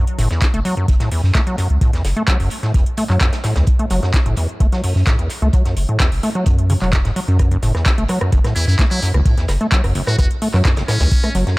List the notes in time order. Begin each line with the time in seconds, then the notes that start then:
0.07 closed hi-hat
0.18 F#1 A2, snare, closed hi-hat, open hi-hat
0.31 E2, snare
0.41 kick, snare, clap, closed hi-hat
0.54 F#1 A3, closed hi-hat
0.65 F#3, closed hi-hat, open hi-hat
0.77 F#2, closed hi-hat
0.88 F#1, kick, closed hi-hat
1.00 A2, snare, closed hi-hat
1.11 E2, open hi-hat
1.24 F#2, snare
1.35 A3, kick, snare, clap, closed hi-hat
1.47 F#3, closed hi-hat
1.57 F#2, snare, closed hi-hat, open hi-hat
1.70 C#2, closed hi-hat
1.81 A2, kick, closed hi-hat
1.93 E2, snare, closed hi-hat
2.05 F#1, snare, closed hi-hat, open hi-hat
2.16 A3, closed hi-hat
2.28 F#3, kick, clap, closed hi-hat
2.40 F#1 F#2, open hi-hat
2.50 closed hi-hat, open hi-hat
2.63 A2, snare, closed hi-hat
2.74 F#1 E2, kick, closed hi-hat
2.86 closed hi-hat
2.97 A3, closed hi-hat, open hi-hat
3.10 F#2 F#3, clap
3.21 F#2, kick, snare, clap, closed hi-hat
3.33 snare, closed hi-hat
3.44 A2, snare, closed hi-hat, open hi-hat
3.56 C#2 E2, snare, closed hi-hat
3.67 kick, closed hi-hat
3.79 A3, closed hi-hat
3.90 F#1 F#3, snare, closed hi-hat, open hi-hat
4.03 F#2, snare, closed hi-hat
4.14 kick, snare, clap, closed hi-hat
4.26 F#1 A2, closed hi-hat
4.37 E2, closed hi-hat, open hi-hat
4.49 closed hi-hat
4.60 F#1 A3, kick, closed hi-hat
4.72 F#3, snare, closed hi-hat
4.84 F#2, open hi-hat
4.96 F#2, snare
5.06 A2, kick, snare, clap, closed hi-hat
5.19 E2, closed hi-hat
5.30 snare, closed hi-hat, open hi-hat
5.42 C#2 A3, closed hi-hat
5.53 F#3, kick, closed hi-hat
5.65 F#2, snare, closed hi-hat
5.77 F#1, closed hi-hat, open hi-hat
5.89 A2, closed hi-hat
5.99 E2, kick, snare, clap, closed hi-hat
6.12 F#1, open hi-hat
6.23 A3, closed hi-hat, open hi-hat
6.35 F#3, closed hi-hat
6.46 F#2, kick, closed hi-hat
6.58 closed hi-hat
6.70 C#3, closed hi-hat, open hi-hat
6.82 E1 F#3, clap
6.92 F#2, kick, snare, clap, closed hi-hat
7.05 G#2, snare, closed hi-hat
7.16 F#3, closed hi-hat, open hi-hat
7.28 F#2, closed hi-hat
7.39 F#2, kick, cross-stick, closed hi-hat
7.51 F#1, closed hi-hat
7.62 F#1 A2, snare, closed hi-hat, open hi-hat
7.75 E2, cross-stick, snare, closed hi-hat
7.85 kick, snare, clap, closed hi-hat
7.98 F#1 A3, closed hi-hat
8.09 F#3, cross-stick, closed hi-hat, open hi-hat
8.21 F#2, cross-stick, closed hi-hat
8.32 F#1, kick, closed hi-hat
8.44 A2, cross-stick, snare, closed hi-hat
8.55 E2 E4, open hi-hat
8.67 F#2 E4, snare
8.79 A3, kick, cross-stick, snare, clap, closed hi-hat
8.91 F#3 E4, closed hi-hat
9.02 F#2, snare, closed hi-hat, open hi-hat
9.14 F#1 C#2, cross-stick, closed hi-hat
9.26 A2, kick, closed hi-hat
9.37 E2, snare, closed hi-hat
9.48 F#1, cross-stick, snare, closed hi-hat, open hi-hat
9.61 A3, closed hi-hat
9.72 F#3, kick, clap, closed hi-hat
9.84 F#1 F#2, cross-stick, open hi-hat
9.95 F#1, closed hi-hat, open hi-hat
10.07 A2 F#4, cross-stick, snare, closed hi-hat
10.19 F#1 F#4, kick, cross-stick, closed hi-hat
10.31 closed hi-hat
10.42 A3, closed hi-hat, open hi-hat
10.54 F#2 F#3, cross-stick, clap
10.65 F#2, kick, cross-stick, snare, clap, closed hi-hat
10.76 F#1, snare, closed hi-hat
10.88 A2 C#4, cross-stick, snare, closed hi-hat, open hi-hat
11.00 C#2 E2, snare, closed hi-hat
11.11 kick, closed hi-hat
11.24 A3, cross-stick, closed hi-hat
11.35 F#1 F#3, snare, closed hi-hat, open hi-hat
11.47 F#2, snare, closed hi-hat